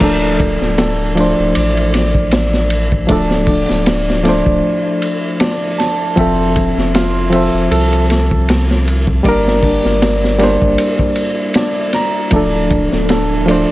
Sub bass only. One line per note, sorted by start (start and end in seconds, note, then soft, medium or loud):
0.01 0.57 D1 medium
0.61 1.34 D1 loud
1.39 1.53 D1 medium
1.56 3.06 A1 medium
3.09 3.65 D1 loud
3.70 4.42 D1 loud
4.46 4.61 D1 medium
6.17 6.73 F1 medium
6.77 7.50 F1 loud
7.53 7.69 F1 medium
7.71 9.21 C2 loud
9.25 9.80 G1 medium
9.85 10.57 G1 loud
10.62 10.77 G1 medium
12.32 12.88 D1 loud
12.93 13.65 D1 loud